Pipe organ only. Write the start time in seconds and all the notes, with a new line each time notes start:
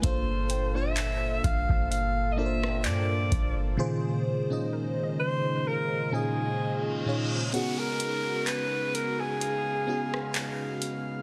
0.04 A#2 A#3 F4 A4
1.91 F4
3.79 C#3 D#3 G#3
5.66 F4
7.54 C#3 G#3 B3 F#4
9.41 F5